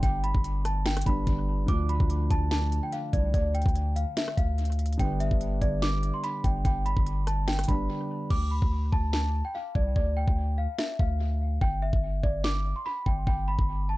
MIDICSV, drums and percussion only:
0, 0, Header, 1, 2, 480
1, 0, Start_track
1, 0, Tempo, 413793
1, 34, Time_signature, 4, 2, 24, 8
1, 16211, End_track
2, 0, Start_track
2, 0, Title_t, "Drums"
2, 33, Note_on_c, 9, 36, 121
2, 33, Note_on_c, 9, 42, 90
2, 149, Note_off_c, 9, 36, 0
2, 149, Note_off_c, 9, 42, 0
2, 275, Note_on_c, 9, 42, 76
2, 391, Note_off_c, 9, 42, 0
2, 401, Note_on_c, 9, 36, 102
2, 514, Note_on_c, 9, 42, 81
2, 517, Note_off_c, 9, 36, 0
2, 630, Note_off_c, 9, 42, 0
2, 755, Note_on_c, 9, 37, 73
2, 755, Note_on_c, 9, 42, 92
2, 871, Note_off_c, 9, 37, 0
2, 871, Note_off_c, 9, 42, 0
2, 993, Note_on_c, 9, 38, 113
2, 994, Note_on_c, 9, 42, 74
2, 1057, Note_off_c, 9, 42, 0
2, 1057, Note_on_c, 9, 42, 72
2, 1109, Note_off_c, 9, 38, 0
2, 1121, Note_on_c, 9, 37, 102
2, 1122, Note_off_c, 9, 42, 0
2, 1122, Note_on_c, 9, 42, 77
2, 1177, Note_off_c, 9, 42, 0
2, 1177, Note_on_c, 9, 42, 74
2, 1234, Note_on_c, 9, 36, 95
2, 1235, Note_off_c, 9, 42, 0
2, 1235, Note_on_c, 9, 42, 72
2, 1237, Note_off_c, 9, 37, 0
2, 1350, Note_off_c, 9, 36, 0
2, 1351, Note_off_c, 9, 42, 0
2, 1472, Note_on_c, 9, 42, 76
2, 1474, Note_on_c, 9, 36, 92
2, 1588, Note_off_c, 9, 42, 0
2, 1590, Note_off_c, 9, 36, 0
2, 1953, Note_on_c, 9, 36, 123
2, 1953, Note_on_c, 9, 42, 89
2, 2069, Note_off_c, 9, 36, 0
2, 2069, Note_off_c, 9, 42, 0
2, 2194, Note_on_c, 9, 42, 73
2, 2310, Note_off_c, 9, 42, 0
2, 2321, Note_on_c, 9, 36, 101
2, 2434, Note_on_c, 9, 42, 85
2, 2437, Note_off_c, 9, 36, 0
2, 2550, Note_off_c, 9, 42, 0
2, 2674, Note_on_c, 9, 36, 97
2, 2675, Note_on_c, 9, 42, 96
2, 2790, Note_off_c, 9, 36, 0
2, 2791, Note_off_c, 9, 42, 0
2, 2914, Note_on_c, 9, 38, 112
2, 2915, Note_on_c, 9, 42, 87
2, 3030, Note_off_c, 9, 38, 0
2, 3031, Note_off_c, 9, 42, 0
2, 3157, Note_on_c, 9, 42, 68
2, 3273, Note_off_c, 9, 42, 0
2, 3393, Note_on_c, 9, 42, 73
2, 3509, Note_off_c, 9, 42, 0
2, 3633, Note_on_c, 9, 36, 96
2, 3635, Note_on_c, 9, 42, 92
2, 3749, Note_off_c, 9, 36, 0
2, 3751, Note_off_c, 9, 42, 0
2, 3874, Note_on_c, 9, 36, 115
2, 3875, Note_on_c, 9, 42, 92
2, 3990, Note_off_c, 9, 36, 0
2, 3991, Note_off_c, 9, 42, 0
2, 4114, Note_on_c, 9, 42, 75
2, 4195, Note_off_c, 9, 42, 0
2, 4195, Note_on_c, 9, 42, 62
2, 4242, Note_on_c, 9, 36, 102
2, 4276, Note_off_c, 9, 42, 0
2, 4276, Note_on_c, 9, 42, 46
2, 4356, Note_off_c, 9, 42, 0
2, 4356, Note_on_c, 9, 42, 83
2, 4358, Note_off_c, 9, 36, 0
2, 4472, Note_off_c, 9, 42, 0
2, 4597, Note_on_c, 9, 42, 96
2, 4713, Note_off_c, 9, 42, 0
2, 4836, Note_on_c, 9, 38, 111
2, 4837, Note_on_c, 9, 42, 86
2, 4952, Note_off_c, 9, 38, 0
2, 4953, Note_off_c, 9, 42, 0
2, 4963, Note_on_c, 9, 37, 99
2, 5075, Note_on_c, 9, 36, 100
2, 5077, Note_on_c, 9, 42, 72
2, 5079, Note_off_c, 9, 37, 0
2, 5191, Note_off_c, 9, 36, 0
2, 5193, Note_off_c, 9, 42, 0
2, 5315, Note_on_c, 9, 42, 46
2, 5396, Note_off_c, 9, 42, 0
2, 5396, Note_on_c, 9, 42, 51
2, 5475, Note_off_c, 9, 42, 0
2, 5475, Note_on_c, 9, 42, 59
2, 5555, Note_off_c, 9, 42, 0
2, 5555, Note_on_c, 9, 42, 67
2, 5634, Note_off_c, 9, 42, 0
2, 5634, Note_on_c, 9, 42, 72
2, 5714, Note_off_c, 9, 42, 0
2, 5714, Note_on_c, 9, 42, 79
2, 5794, Note_off_c, 9, 42, 0
2, 5794, Note_on_c, 9, 36, 119
2, 5794, Note_on_c, 9, 42, 94
2, 5910, Note_off_c, 9, 36, 0
2, 5910, Note_off_c, 9, 42, 0
2, 6035, Note_on_c, 9, 42, 75
2, 6151, Note_off_c, 9, 42, 0
2, 6161, Note_on_c, 9, 36, 103
2, 6274, Note_on_c, 9, 42, 86
2, 6277, Note_off_c, 9, 36, 0
2, 6390, Note_off_c, 9, 42, 0
2, 6515, Note_on_c, 9, 36, 95
2, 6515, Note_on_c, 9, 42, 96
2, 6631, Note_off_c, 9, 36, 0
2, 6631, Note_off_c, 9, 42, 0
2, 6754, Note_on_c, 9, 38, 115
2, 6755, Note_on_c, 9, 42, 85
2, 6870, Note_off_c, 9, 38, 0
2, 6871, Note_off_c, 9, 42, 0
2, 6996, Note_on_c, 9, 42, 68
2, 7112, Note_off_c, 9, 42, 0
2, 7234, Note_on_c, 9, 42, 74
2, 7350, Note_off_c, 9, 42, 0
2, 7473, Note_on_c, 9, 36, 94
2, 7474, Note_on_c, 9, 42, 90
2, 7589, Note_off_c, 9, 36, 0
2, 7590, Note_off_c, 9, 42, 0
2, 7714, Note_on_c, 9, 36, 117
2, 7714, Note_on_c, 9, 42, 89
2, 7830, Note_off_c, 9, 36, 0
2, 7830, Note_off_c, 9, 42, 0
2, 7956, Note_on_c, 9, 42, 75
2, 8072, Note_off_c, 9, 42, 0
2, 8081, Note_on_c, 9, 36, 101
2, 8195, Note_on_c, 9, 42, 84
2, 8197, Note_off_c, 9, 36, 0
2, 8311, Note_off_c, 9, 42, 0
2, 8434, Note_on_c, 9, 37, 75
2, 8435, Note_on_c, 9, 42, 92
2, 8550, Note_off_c, 9, 37, 0
2, 8551, Note_off_c, 9, 42, 0
2, 8673, Note_on_c, 9, 38, 109
2, 8674, Note_on_c, 9, 42, 71
2, 8738, Note_off_c, 9, 42, 0
2, 8738, Note_on_c, 9, 42, 72
2, 8789, Note_off_c, 9, 38, 0
2, 8802, Note_off_c, 9, 42, 0
2, 8802, Note_on_c, 9, 37, 102
2, 8802, Note_on_c, 9, 42, 75
2, 8858, Note_off_c, 9, 42, 0
2, 8858, Note_on_c, 9, 42, 73
2, 8915, Note_on_c, 9, 36, 97
2, 8916, Note_off_c, 9, 42, 0
2, 8916, Note_on_c, 9, 42, 73
2, 8918, Note_off_c, 9, 37, 0
2, 9031, Note_off_c, 9, 36, 0
2, 9032, Note_off_c, 9, 42, 0
2, 9634, Note_on_c, 9, 36, 117
2, 9634, Note_on_c, 9, 49, 96
2, 9750, Note_off_c, 9, 36, 0
2, 9750, Note_off_c, 9, 49, 0
2, 10001, Note_on_c, 9, 36, 101
2, 10117, Note_off_c, 9, 36, 0
2, 10354, Note_on_c, 9, 36, 93
2, 10470, Note_off_c, 9, 36, 0
2, 10593, Note_on_c, 9, 38, 107
2, 10709, Note_off_c, 9, 38, 0
2, 11312, Note_on_c, 9, 36, 92
2, 11428, Note_off_c, 9, 36, 0
2, 11553, Note_on_c, 9, 36, 117
2, 11669, Note_off_c, 9, 36, 0
2, 11920, Note_on_c, 9, 36, 98
2, 12036, Note_off_c, 9, 36, 0
2, 12511, Note_on_c, 9, 38, 107
2, 12627, Note_off_c, 9, 38, 0
2, 12753, Note_on_c, 9, 36, 94
2, 12869, Note_off_c, 9, 36, 0
2, 13472, Note_on_c, 9, 36, 118
2, 13588, Note_off_c, 9, 36, 0
2, 13840, Note_on_c, 9, 36, 101
2, 13956, Note_off_c, 9, 36, 0
2, 14193, Note_on_c, 9, 36, 93
2, 14309, Note_off_c, 9, 36, 0
2, 14432, Note_on_c, 9, 38, 111
2, 14548, Note_off_c, 9, 38, 0
2, 15153, Note_on_c, 9, 36, 94
2, 15269, Note_off_c, 9, 36, 0
2, 15393, Note_on_c, 9, 36, 114
2, 15509, Note_off_c, 9, 36, 0
2, 15761, Note_on_c, 9, 36, 96
2, 15877, Note_off_c, 9, 36, 0
2, 16211, End_track
0, 0, End_of_file